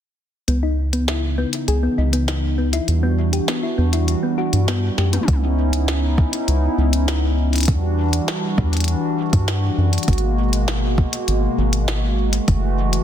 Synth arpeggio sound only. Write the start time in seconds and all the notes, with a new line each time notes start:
0.48 B3
0.63 D#4
0.93 B3
1.08 E4
1.38 B3
1.68 G#4
1.83 B3
1.98 D#4
2.13 B3
2.28 D#4
2.58 B3
2.73 E4
3.03 B3
3.33 G4
3.48 B3
3.63 E4
3.78 B3
3.93 E4
4.23 B3
4.38 F#4
4.68 B3
4.98 G4
5.13 B3